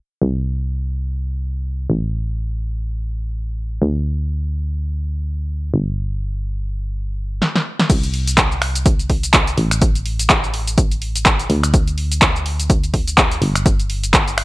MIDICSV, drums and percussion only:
0, 0, Header, 1, 2, 480
1, 0, Start_track
1, 0, Tempo, 480000
1, 217, Time_signature, 4, 2, 24, 8
1, 14441, End_track
2, 0, Start_track
2, 0, Title_t, "Drums"
2, 7418, Note_on_c, 9, 38, 57
2, 7518, Note_off_c, 9, 38, 0
2, 7555, Note_on_c, 9, 38, 62
2, 7655, Note_off_c, 9, 38, 0
2, 7795, Note_on_c, 9, 38, 78
2, 7895, Note_off_c, 9, 38, 0
2, 7897, Note_on_c, 9, 36, 121
2, 7897, Note_on_c, 9, 42, 67
2, 7897, Note_on_c, 9, 49, 108
2, 7900, Note_on_c, 9, 82, 61
2, 7997, Note_off_c, 9, 36, 0
2, 7997, Note_off_c, 9, 42, 0
2, 7997, Note_off_c, 9, 49, 0
2, 8000, Note_off_c, 9, 82, 0
2, 8035, Note_on_c, 9, 42, 39
2, 8039, Note_on_c, 9, 82, 33
2, 8135, Note_off_c, 9, 42, 0
2, 8137, Note_on_c, 9, 46, 105
2, 8139, Note_off_c, 9, 82, 0
2, 8237, Note_off_c, 9, 46, 0
2, 8275, Note_on_c, 9, 42, 55
2, 8278, Note_on_c, 9, 82, 66
2, 8375, Note_off_c, 9, 42, 0
2, 8377, Note_on_c, 9, 36, 122
2, 8377, Note_on_c, 9, 42, 68
2, 8378, Note_off_c, 9, 82, 0
2, 8378, Note_on_c, 9, 39, 119
2, 8380, Note_on_c, 9, 82, 57
2, 8477, Note_off_c, 9, 36, 0
2, 8477, Note_off_c, 9, 42, 0
2, 8478, Note_off_c, 9, 39, 0
2, 8480, Note_off_c, 9, 82, 0
2, 8518, Note_on_c, 9, 82, 32
2, 8617, Note_on_c, 9, 26, 78
2, 8617, Note_on_c, 9, 46, 98
2, 8618, Note_off_c, 9, 82, 0
2, 8717, Note_off_c, 9, 26, 0
2, 8717, Note_off_c, 9, 46, 0
2, 8755, Note_on_c, 9, 42, 50
2, 8758, Note_on_c, 9, 82, 66
2, 8855, Note_off_c, 9, 42, 0
2, 8856, Note_on_c, 9, 42, 72
2, 8857, Note_on_c, 9, 36, 122
2, 8858, Note_off_c, 9, 82, 0
2, 8860, Note_on_c, 9, 82, 58
2, 8956, Note_off_c, 9, 42, 0
2, 8957, Note_off_c, 9, 36, 0
2, 8960, Note_off_c, 9, 82, 0
2, 8995, Note_on_c, 9, 42, 40
2, 8998, Note_on_c, 9, 82, 34
2, 9095, Note_off_c, 9, 42, 0
2, 9096, Note_on_c, 9, 46, 105
2, 9097, Note_on_c, 9, 36, 61
2, 9098, Note_off_c, 9, 82, 0
2, 9196, Note_off_c, 9, 46, 0
2, 9197, Note_off_c, 9, 36, 0
2, 9234, Note_on_c, 9, 42, 54
2, 9237, Note_on_c, 9, 82, 73
2, 9334, Note_off_c, 9, 42, 0
2, 9336, Note_on_c, 9, 42, 68
2, 9337, Note_off_c, 9, 82, 0
2, 9337, Note_on_c, 9, 36, 122
2, 9337, Note_on_c, 9, 39, 125
2, 9339, Note_on_c, 9, 82, 53
2, 9436, Note_off_c, 9, 42, 0
2, 9437, Note_off_c, 9, 36, 0
2, 9437, Note_off_c, 9, 39, 0
2, 9439, Note_off_c, 9, 82, 0
2, 9474, Note_on_c, 9, 42, 40
2, 9477, Note_on_c, 9, 82, 35
2, 9574, Note_off_c, 9, 42, 0
2, 9575, Note_on_c, 9, 46, 90
2, 9577, Note_off_c, 9, 82, 0
2, 9675, Note_off_c, 9, 46, 0
2, 9714, Note_on_c, 9, 26, 61
2, 9714, Note_on_c, 9, 42, 54
2, 9717, Note_on_c, 9, 82, 67
2, 9814, Note_off_c, 9, 26, 0
2, 9814, Note_off_c, 9, 42, 0
2, 9816, Note_on_c, 9, 42, 68
2, 9817, Note_off_c, 9, 82, 0
2, 9817, Note_on_c, 9, 36, 126
2, 9819, Note_on_c, 9, 82, 56
2, 9916, Note_off_c, 9, 42, 0
2, 9917, Note_off_c, 9, 36, 0
2, 9919, Note_off_c, 9, 82, 0
2, 9954, Note_on_c, 9, 42, 38
2, 9957, Note_on_c, 9, 82, 33
2, 10054, Note_off_c, 9, 42, 0
2, 10056, Note_on_c, 9, 46, 106
2, 10057, Note_off_c, 9, 82, 0
2, 10156, Note_off_c, 9, 46, 0
2, 10194, Note_on_c, 9, 42, 57
2, 10198, Note_on_c, 9, 82, 72
2, 10294, Note_off_c, 9, 42, 0
2, 10296, Note_on_c, 9, 42, 67
2, 10297, Note_on_c, 9, 36, 121
2, 10297, Note_on_c, 9, 39, 122
2, 10298, Note_off_c, 9, 82, 0
2, 10300, Note_on_c, 9, 82, 56
2, 10396, Note_off_c, 9, 42, 0
2, 10397, Note_off_c, 9, 36, 0
2, 10397, Note_off_c, 9, 39, 0
2, 10400, Note_off_c, 9, 82, 0
2, 10438, Note_on_c, 9, 82, 33
2, 10536, Note_on_c, 9, 46, 96
2, 10538, Note_off_c, 9, 82, 0
2, 10636, Note_off_c, 9, 46, 0
2, 10674, Note_on_c, 9, 42, 50
2, 10678, Note_on_c, 9, 82, 62
2, 10774, Note_off_c, 9, 42, 0
2, 10776, Note_on_c, 9, 42, 71
2, 10777, Note_on_c, 9, 36, 127
2, 10778, Note_off_c, 9, 82, 0
2, 10780, Note_on_c, 9, 82, 58
2, 10876, Note_off_c, 9, 42, 0
2, 10877, Note_off_c, 9, 36, 0
2, 10880, Note_off_c, 9, 82, 0
2, 10915, Note_on_c, 9, 42, 40
2, 10918, Note_on_c, 9, 82, 34
2, 11015, Note_off_c, 9, 42, 0
2, 11017, Note_on_c, 9, 46, 108
2, 11018, Note_off_c, 9, 82, 0
2, 11117, Note_off_c, 9, 46, 0
2, 11155, Note_on_c, 9, 42, 54
2, 11159, Note_on_c, 9, 82, 67
2, 11255, Note_off_c, 9, 42, 0
2, 11257, Note_on_c, 9, 36, 123
2, 11257, Note_on_c, 9, 42, 65
2, 11258, Note_on_c, 9, 39, 127
2, 11259, Note_off_c, 9, 82, 0
2, 11260, Note_on_c, 9, 82, 55
2, 11357, Note_off_c, 9, 36, 0
2, 11357, Note_off_c, 9, 42, 0
2, 11358, Note_off_c, 9, 39, 0
2, 11360, Note_off_c, 9, 82, 0
2, 11395, Note_on_c, 9, 42, 38
2, 11398, Note_on_c, 9, 82, 34
2, 11495, Note_off_c, 9, 42, 0
2, 11497, Note_on_c, 9, 46, 96
2, 11498, Note_off_c, 9, 82, 0
2, 11597, Note_off_c, 9, 46, 0
2, 11635, Note_on_c, 9, 26, 63
2, 11635, Note_on_c, 9, 42, 52
2, 11638, Note_on_c, 9, 82, 63
2, 11735, Note_off_c, 9, 26, 0
2, 11735, Note_off_c, 9, 42, 0
2, 11737, Note_on_c, 9, 36, 124
2, 11737, Note_on_c, 9, 42, 68
2, 11738, Note_off_c, 9, 82, 0
2, 11740, Note_on_c, 9, 82, 54
2, 11837, Note_off_c, 9, 36, 0
2, 11837, Note_off_c, 9, 42, 0
2, 11840, Note_off_c, 9, 82, 0
2, 11875, Note_on_c, 9, 42, 38
2, 11878, Note_on_c, 9, 82, 34
2, 11975, Note_off_c, 9, 42, 0
2, 11977, Note_on_c, 9, 46, 106
2, 11978, Note_off_c, 9, 82, 0
2, 12077, Note_off_c, 9, 46, 0
2, 12116, Note_on_c, 9, 42, 53
2, 12119, Note_on_c, 9, 82, 66
2, 12216, Note_off_c, 9, 42, 0
2, 12217, Note_on_c, 9, 36, 123
2, 12218, Note_on_c, 9, 42, 68
2, 12219, Note_off_c, 9, 82, 0
2, 12219, Note_on_c, 9, 39, 125
2, 12221, Note_on_c, 9, 82, 53
2, 12317, Note_off_c, 9, 36, 0
2, 12317, Note_off_c, 9, 42, 0
2, 12319, Note_off_c, 9, 39, 0
2, 12321, Note_off_c, 9, 82, 0
2, 12359, Note_on_c, 9, 82, 31
2, 12458, Note_on_c, 9, 46, 96
2, 12459, Note_off_c, 9, 82, 0
2, 12558, Note_off_c, 9, 46, 0
2, 12596, Note_on_c, 9, 42, 49
2, 12599, Note_on_c, 9, 82, 61
2, 12696, Note_off_c, 9, 42, 0
2, 12697, Note_on_c, 9, 36, 127
2, 12697, Note_on_c, 9, 42, 64
2, 12699, Note_off_c, 9, 82, 0
2, 12701, Note_on_c, 9, 82, 55
2, 12797, Note_off_c, 9, 36, 0
2, 12797, Note_off_c, 9, 42, 0
2, 12801, Note_off_c, 9, 82, 0
2, 12836, Note_on_c, 9, 42, 38
2, 12839, Note_on_c, 9, 82, 35
2, 12936, Note_off_c, 9, 42, 0
2, 12937, Note_on_c, 9, 36, 63
2, 12937, Note_on_c, 9, 46, 110
2, 12939, Note_off_c, 9, 82, 0
2, 13037, Note_off_c, 9, 36, 0
2, 13037, Note_off_c, 9, 46, 0
2, 13075, Note_on_c, 9, 42, 50
2, 13079, Note_on_c, 9, 82, 67
2, 13175, Note_off_c, 9, 42, 0
2, 13177, Note_on_c, 9, 36, 127
2, 13177, Note_on_c, 9, 42, 62
2, 13178, Note_on_c, 9, 39, 125
2, 13179, Note_off_c, 9, 82, 0
2, 13181, Note_on_c, 9, 82, 53
2, 13277, Note_off_c, 9, 36, 0
2, 13277, Note_off_c, 9, 42, 0
2, 13278, Note_off_c, 9, 39, 0
2, 13281, Note_off_c, 9, 82, 0
2, 13315, Note_on_c, 9, 42, 39
2, 13318, Note_on_c, 9, 82, 34
2, 13415, Note_off_c, 9, 42, 0
2, 13417, Note_on_c, 9, 46, 98
2, 13418, Note_off_c, 9, 82, 0
2, 13517, Note_off_c, 9, 46, 0
2, 13555, Note_on_c, 9, 26, 68
2, 13555, Note_on_c, 9, 42, 51
2, 13559, Note_on_c, 9, 82, 62
2, 13655, Note_off_c, 9, 26, 0
2, 13655, Note_off_c, 9, 42, 0
2, 13657, Note_on_c, 9, 36, 118
2, 13657, Note_on_c, 9, 42, 65
2, 13659, Note_off_c, 9, 82, 0
2, 13661, Note_on_c, 9, 82, 59
2, 13757, Note_off_c, 9, 36, 0
2, 13757, Note_off_c, 9, 42, 0
2, 13761, Note_off_c, 9, 82, 0
2, 13795, Note_on_c, 9, 42, 38
2, 13799, Note_on_c, 9, 82, 32
2, 13895, Note_off_c, 9, 42, 0
2, 13897, Note_on_c, 9, 46, 111
2, 13899, Note_off_c, 9, 82, 0
2, 13997, Note_off_c, 9, 46, 0
2, 14035, Note_on_c, 9, 42, 52
2, 14038, Note_on_c, 9, 82, 67
2, 14135, Note_off_c, 9, 42, 0
2, 14137, Note_on_c, 9, 36, 123
2, 14137, Note_on_c, 9, 42, 66
2, 14138, Note_off_c, 9, 82, 0
2, 14138, Note_on_c, 9, 39, 117
2, 14141, Note_on_c, 9, 82, 54
2, 14237, Note_off_c, 9, 36, 0
2, 14237, Note_off_c, 9, 42, 0
2, 14238, Note_off_c, 9, 39, 0
2, 14241, Note_off_c, 9, 82, 0
2, 14276, Note_on_c, 9, 42, 35
2, 14279, Note_on_c, 9, 82, 33
2, 14376, Note_off_c, 9, 42, 0
2, 14377, Note_on_c, 9, 26, 83
2, 14377, Note_on_c, 9, 46, 94
2, 14379, Note_off_c, 9, 82, 0
2, 14441, Note_off_c, 9, 26, 0
2, 14441, Note_off_c, 9, 46, 0
2, 14441, End_track
0, 0, End_of_file